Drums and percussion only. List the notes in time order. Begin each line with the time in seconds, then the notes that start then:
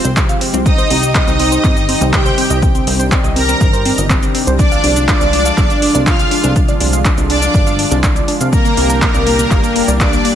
0.05 closed hi-hat, shaker
0.17 kick, clap, closed hi-hat, shaker
0.29 closed hi-hat, shaker
0.41 open hi-hat
0.54 closed hi-hat, shaker
0.66 kick, closed hi-hat, shaker
0.78 closed hi-hat, shaker
0.90 open hi-hat
1.03 closed hi-hat, shaker
1.15 kick, clap, closed hi-hat, shaker
1.28 closed hi-hat, shaker
1.40 open hi-hat
1.52 closed hi-hat, shaker
1.64 kick, clap, closed hi-hat, shaker
1.77 closed hi-hat, shaker
1.89 open hi-hat
2.01 closed hi-hat, shaker
2.13 kick, clap, closed hi-hat, shaker
2.26 closed hi-hat, shaker
2.38 open hi-hat
2.50 closed hi-hat, shaker
2.62 kick, closed hi-hat, shaker
2.75 closed hi-hat, shaker
2.87 open hi-hat
3.00 shaker
3.12 kick, clap, closed hi-hat, shaker
3.24 closed hi-hat, shaker
3.36 open hi-hat
3.49 closed hi-hat, shaker
3.61 kick, closed hi-hat, shaker
3.73 closed hi-hat, shaker
3.85 open hi-hat
3.98 closed hi-hat, shaker
4.10 kick, clap, closed hi-hat, shaker
4.23 closed hi-hat, shaker
4.35 open hi-hat
4.47 closed hi-hat, shaker
4.59 kick, closed hi-hat, shaker
4.72 closed hi-hat, shaker
4.84 open hi-hat
4.96 closed hi-hat, shaker
5.08 kick, clap, closed hi-hat, shaker
5.21 closed hi-hat, shaker
5.33 open hi-hat
5.46 closed hi-hat, shaker
5.58 kick, clap, closed hi-hat, shaker
5.70 closed hi-hat, shaker
5.82 open hi-hat
5.95 shaker
6.07 kick, clap, closed hi-hat, shaker
6.19 closed hi-hat, shaker
6.31 open hi-hat
6.44 closed hi-hat, shaker
6.56 kick, closed hi-hat, shaker
6.68 closed hi-hat, shaker
6.80 open hi-hat
6.93 closed hi-hat, shaker
7.05 kick, clap, closed hi-hat, shaker
7.18 closed hi-hat, shaker
7.30 open hi-hat
7.42 closed hi-hat, shaker
7.54 kick, closed hi-hat, shaker
7.67 closed hi-hat, shaker
7.79 open hi-hat
7.91 closed hi-hat, shaker
8.03 kick, clap, closed hi-hat, shaker
8.16 closed hi-hat, shaker
8.28 open hi-hat
8.41 closed hi-hat, shaker
8.53 kick, closed hi-hat, shaker
8.65 closed hi-hat, shaker
8.77 open hi-hat
8.90 closed hi-hat, shaker
9.02 kick, clap, closed hi-hat, shaker
9.14 closed hi-hat, shaker
9.27 open hi-hat
9.39 closed hi-hat, shaker
9.51 kick, clap, closed hi-hat, shaker
9.64 closed hi-hat, shaker
9.76 open hi-hat
9.88 closed hi-hat, shaker
10.00 kick, clap, closed hi-hat, shaker
10.13 closed hi-hat, shaker
10.25 open hi-hat